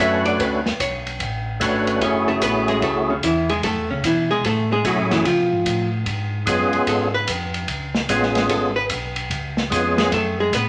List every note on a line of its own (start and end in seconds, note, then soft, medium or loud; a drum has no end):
0.00 0.38 F#2 medium
0.00 0.60 A3 medium
0.00 0.60 C#4 medium
0.00 0.61 D4 medium
0.00 0.61 F#4 medium
0.00 0.61 B4 medium
0.00 0.25 E5 medium
0.25 0.39 D5 medium
0.25 ride soft
0.39 0.64 D2 medium
0.39 0.78 B4 medium
0.39 kick soft
0.39 ride medium
0.65 0.72 D2 soft
0.65 snare soft
0.80 1.19 B1 medium
0.80 1.43 C#5 medium
0.80 kick soft
0.80 hi-hat pedal medium
0.80 ride medium
1.07 ride soft
1.20 1.59 A1 medium
1.20 kick soft
1.20 ride medium
1.60 2.00 G#1 medium
1.60 1.99 A3 medium
1.60 2.00 C#4 medium
1.60 2.01 D4 medium
1.60 2.01 F#4 medium
1.60 2.02 B4 medium
1.60 kick soft
1.60 hi-hat pedal medium
1.60 ride medium
1.87 ride soft
2.01 2.40 F#1 medium
2.01 3.14 A3 medium
2.01 3.14 C#4 medium
2.01 2.27 C#4 medium
2.01 3.14 E4 medium
2.01 3.14 F#4 medium
2.01 3.15 G#4 medium
2.01 2.27 C#5 medium
2.01 kick soft
2.01 ride medium
2.28 2.42 A3 medium
2.28 2.41 A4 loud
2.41 2.81 A1 medium
2.41 2.68 B3 medium
2.41 2.68 B4 medium
2.41 kick soft
2.41 hi-hat pedal medium
2.41 ride medium
2.68 2.82 G#3 medium
2.68 2.82 G#4 medium
2.68 ride soft
2.82 3.21 C#2 medium
2.82 3.08 A3 medium
2.82 3.08 A4 medium
2.82 kick soft
2.82 ride medium
3.10 3.23 C#3 soft
3.10 3.23 C#4 soft
3.22 3.62 E2 medium
3.22 3.49 E3 medium
3.22 3.49 E4 medium
3.22 kick soft
3.22 hi-hat pedal medium
3.22 ride medium
3.49 3.63 G#3 medium
3.49 3.63 G#4 medium
3.49 ride soft
3.63 3.76 F#2 medium
3.63 3.89 A3 medium
3.63 3.89 A4 medium
3.63 kick soft
3.63 ride medium
3.76 3.90 E2 medium
3.89 4.02 C#2 medium
3.89 4.04 C#3 soft
3.89 4.04 C#4 medium
4.03 4.43 B2 medium
4.03 4.30 E3 medium
4.03 4.30 E4 medium
4.03 kick soft
4.03 hi-hat pedal medium
4.03 ride medium
4.31 4.44 G#3 medium
4.31 4.44 G#4 medium
4.44 4.83 A2 medium
4.44 4.71 A3 medium
4.44 4.70 A4 medium
4.44 kick soft
4.44 ride medium
4.72 4.85 G#3 medium
4.72 4.85 G#4 medium
4.84 4.97 B2 medium
4.84 5.11 F#3 medium
4.84 5.25 A3 medium
4.84 5.25 C#4 medium
4.84 5.25 E4 medium
4.84 5.26 F#4 medium
4.84 5.11 F#4 medium
4.84 5.26 G#4 medium
4.84 kick soft
4.84 hi-hat pedal medium
4.84 ride medium
4.98 5.11 A2 medium
5.11 5.24 F#2 medium
5.11 5.25 E3 medium
5.11 5.25 E4 medium
5.11 snare soft
5.11 ride soft
5.25 5.38 C#3 medium
5.25 5.89 F3 medium
5.25 5.89 F4 medium
5.25 kick soft
5.25 ride medium
5.38 5.52 B2 medium
5.51 5.64 G#2 medium
5.65 6.05 A2 medium
5.65 kick soft
5.65 hi-hat pedal medium
5.65 ride medium
6.06 6.45 G#2 medium
6.06 kick soft
6.06 ride medium
6.46 6.71 F#2 medium
6.46 7.08 G#3 medium
6.46 7.08 B3 medium
6.46 7.08 C#4 medium
6.46 7.09 F4 medium
6.46 7.09 G#4 medium
6.46 kick soft
6.46 hi-hat pedal medium
6.46 ride medium
6.72 6.80 F#2 soft
6.72 ride soft
6.87 7.26 G#2 medium
6.87 7.13 A4 medium
6.87 kick soft
6.87 ride medium
7.14 7.28 B4 loud
7.27 7.67 F2 medium
7.27 kick soft
7.27 hi-hat pedal medium
7.27 ride medium
7.54 ride soft
7.68 8.08 C#2 medium
7.68 kick soft
7.68 ride medium
7.95 snare soft
8.08 8.48 A1 medium
8.08 8.71 G#3 medium
8.08 8.71 B3 medium
8.08 8.71 C#4 medium
8.08 8.71 F4 medium
8.08 8.71 G#4 medium
8.08 kick soft
8.08 hi-hat pedal medium
8.08 ride medium
8.23 snare soft
8.35 snare soft
8.35 ride medium
8.49 8.88 G#1 medium
8.49 8.76 A4 medium
8.49 kick soft
8.49 ride medium
8.76 8.84 B4 loud
8.90 9.29 B1 medium
8.90 kick soft
8.90 hi-hat pedal medium
8.90 ride medium
9.16 ride medium
9.30 9.70 C#2 medium
9.30 kick soft
9.30 ride medium
9.57 snare soft
9.70 10.11 F2 medium
9.70 10.11 G#3 medium
9.70 10.12 B3 medium
9.70 10.12 C#4 medium
9.70 10.12 F4 medium
9.70 10.12 G#4 medium
9.70 kick soft
9.70 hi-hat pedal medium
9.70 ride medium
9.98 10.12 G#3 medium
9.98 10.12 G#4 medium
9.98 snare medium
9.98 ride soft
10.12 10.51 F#2 medium
10.12 10.39 A3 medium
10.12 10.38 A4 medium
10.12 kick soft
10.12 ride medium
10.40 10.53 G#3 medium
10.40 10.53 G#4 medium
10.52 10.69 A2 medium
10.52 10.69 B3 medium
10.52 10.69 B4 medium
10.52 kick soft
10.52 hi-hat pedal medium
10.52 ride medium